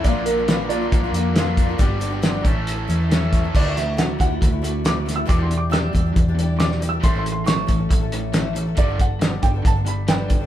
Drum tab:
CC |----------------|----------------|x---------------|----------------|
HH |x-x-x-x-x-x-x-x-|x-x-x-x-x-x-x-x-|--x-x-x-x-x-x-x-|x-x-x-x-x-x-x-x-|
SD |----o-------o---|----o-------o-o-|--o-o-------o-o-|----o-------oo--|
BD |o-------o-----o-|o-----o-------o-|o-----o-o-------|o-----o-o-------|

CC |----------------|----------------|
HH |x-x-x-x-x-x-x-x-|x-x-x-x-x-x-x-x-|
SD |----o-------o---|----o-------o---|
BD |o-----o-o-------|o-o---o-o-----o-|